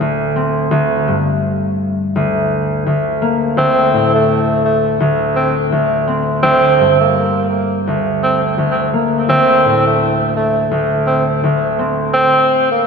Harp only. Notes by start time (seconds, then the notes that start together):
Already playing: A2
0.00 D2
0.36 C4
0.71 D2
1.08 G2
2.16 D2
2.86 D2
3.22 A#3
3.57 D2
3.93 A2
5.00 D2
5.72 D2
6.07 C4
6.43 D2
6.80 G2
7.87 D2
8.58 D2
8.93 A#3
9.29 D2
9.64 A2
10.71 D2
11.44 D2
11.79 C4